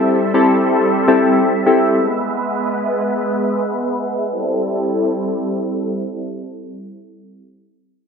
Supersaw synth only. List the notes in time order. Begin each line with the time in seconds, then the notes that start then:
Already playing: G3 C4 A4 E5
1.96 G#3 B3 B4
4.31 G3 C4 E4 A4